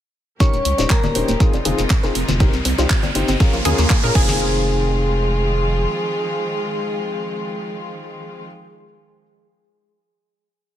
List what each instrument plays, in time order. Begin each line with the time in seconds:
0.40 string section C#3 G3 A#3 D#4 G4, grand piano C#4 D#4 G4 A#4, synth pluck G4, soft synth lead C#5, synth bell C#6, kick, closed hi-hat, riser, shekere
0.53 analog synth bass D#1, synth pluck A#3, closed hi-hat, shekere
0.65 analog synth bass C#2, synth pluck A#3, open hi-hat
0.78 analog synth bass D#1, grand piano C#4 D#4 G4 C5, synth pluck F4, closed hi-hat, cowbell, shekere
0.90 synth pluck A#3, soft synth lead A#4, synth bell A#5, kick, clap, closed hi-hat, shekere
1.03 analog synth bass D#1, synth pluck A#3, closed hi-hat, cowbell, high conga, shekere
1.15 analog synth bass D#1, grand piano C#4 D#4 G4 C5, open hi-hat
1.28 analog synth bass D#1, synth pluck A#3, closed hi-hat, shekere
1.40 string section C3 F3 G#3 F4, grand piano C4 D#4 F4 G#4, kick, closed hi-hat, shekere
1.53 analog synth bass F1, synth pluck C4, closed hi-hat, cowbell, shekere
1.65 analog synth bass F1, grand piano C4 D#4 F4 G#4, synth pluck G#4, open hi-hat, high conga
1.78 analog synth bass F1, synth pluck C4, closed hi-hat, shekere
1.90 synth pluck C4, kick, clap, closed hi-hat, shekere
2.03 analog synth bass F1, grand piano C4 D#4 F4 G#4, synth pluck A#4, closed hi-hat, shekere
2.15 analog synth bass F1, synth pluck C4, open hi-hat
2.28 analog synth bass F1, synth pluck C4, closed hi-hat, high conga, shekere
2.40 string section D#3 G3 A#3, grand piano C4 D#4 G4 A#4, synth pluck G4, kick, closed hi-hat, shekere
2.53 analog synth bass C2, synth pluck C4, closed hi-hat, shekere
2.65 analog synth bass C2, synth pluck C4, open hi-hat
2.78 analog synth bass C2, grand piano C4 D#4 G4 C5, synth pluck F4, closed hi-hat, cowbell, shekere
2.90 synth pluck C4, kick, clap, closed hi-hat, shekere
3.03 analog synth bass G1, synth pluck C4, closed hi-hat, cowbell, high conga, shekere
3.15 analog synth bass G1, grand piano C4 D#4 G4 C5, open hi-hat
3.28 analog synth bass G1, synth pluck C4, closed hi-hat, shekere
3.40 string section C#3 F3 G#3 A#3 F4, grand piano C#4 F4 G#4 A#4, kick, closed hi-hat, shekere
3.53 analog synth bass A#1, synth pluck A#3, closed hi-hat, shekere
3.65 analog synth bass D#2, grand piano C#4 F4 G#4 A#4, synth pluck G#4, open hi-hat, high conga
3.78 analog synth bass D#2, synth pluck A#3, closed hi-hat, shekere
3.90 synth pluck A#3, kick, clap, closed hi-hat, shekere
4.03 analog synth bass A#2, grand piano C#4 F4 G#4 A#4, synth pluck A#4, closed hi-hat, shekere
4.15 analog synth bass F1, string section D#3 F3 G#3 C4 F4, grand piano C4 D#4 F4 G#4, synth pluck G#4, soft synth lead G#4, synth bell G#5, kick, crash
4.28 high conga, shekere